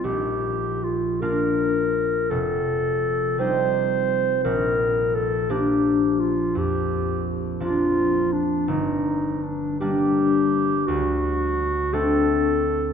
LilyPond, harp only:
\new Staff \with { instrumentName = "Harp" } { \time 12/8 \key bes \major \tempo 4. = 56 bes,,4. <bes d' f'>4. f,,4. <g c' ees'>4. | bes,,4. <f bes d'>4. f,4. <f bes d'>4. | g,,4. <g bes d'>4. d,4. <a c' d'>4. | }